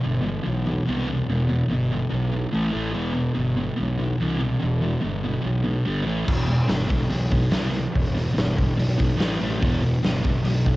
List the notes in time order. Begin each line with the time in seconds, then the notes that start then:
0.04 G1 E2 B2
0.22 E2 B2
0.44 B1 E2 B2
0.66 E2 B2
0.87 C2 E2 B2 E3
1.09 E2 B2
1.29 E1 E2 B2
1.49 E2 B2
1.69 G1 E2 B2
1.92 E2 B2
2.10 B1 E2 B2
2.32 E2 B2
2.53 A1 A2 E3 A3
2.72 A1 A2 E3 A3
2.92 E1 E2 B2 E3
3.13 E2 B2
3.35 G1 E2 B2
3.57 E2 B2
3.77 B1 E2 B2
3.98 E2 B2
4.21 C2 E2 B2 E3
4.39 E2 B2
4.60 E1 E2 B2
4.82 E2 B2
5.01 G1 E2 B2
5.23 E2 B2
5.42 B1 E2 B2
5.64 E2 B2
5.85 G1 G2 D3 G3
6.04 A1 A2 E3 A3
6.25 E1 E2 B2 E3, kick, crash
6.47 E2 B2, open hi-hat
6.68 G1 E2 B2, snare, open hi-hat
6.86 E2 B2, kick, open hi-hat
7.09 B1 E2 B2, open hi-hat
7.31 E2 B2, kick, open hi-hat
7.50 C2 E2 B2 E3, snare, open hi-hat
7.70 E2 B2, open hi-hat
7.92 E1 E2 B2, kick, open hi-hat
8.15 E2 B2, open hi-hat
8.33 G1 E2 B2
8.38 snare, open hi-hat
8.56 E2 B2, kick, open hi-hat
8.76 B1 E2 B2, open hi-hat
8.98 E2 B2, kick, open hi-hat
9.17 A1 A2 E3 A3, snare, open hi-hat
9.40 A1 A2 E3 A3, open hi-hat
9.60 E1 E2 B2 E3, kick, open hi-hat
9.81 E2 B2, open hi-hat
10.02 G1 E2 B2, snare, open hi-hat
10.23 E2 B2, kick, open hi-hat
10.44 B1 E2 B2, open hi-hat
10.66 E2 B2, kick, open hi-hat